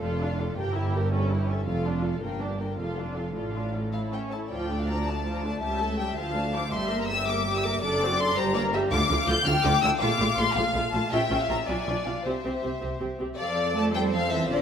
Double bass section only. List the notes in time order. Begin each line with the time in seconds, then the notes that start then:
0.03 F1
0.58 G1
1.67 F1
2.22 G1
2.78 F1
3.35 A1
4.50 D2
5.62 C#2
6.17 D2
6.73 G1
7.83 F#1
8.36 G1
8.91 D2
9.09 D2
9.27 D2
9.46 D2
9.64 D2
9.83 D2
10.01 A#1
10.19 A#1
10.37 A#1
10.55 A#1
10.74 A#1
10.93 A#1
11.11 A#1
11.30 A#1
11.48 A#1
11.67 B1
11.86 B1
12.06 B1
12.25 C2
12.45 C2
12.64 C2
12.83 C2
13.01 C2
13.21 C2
13.40 F2
14.50 A1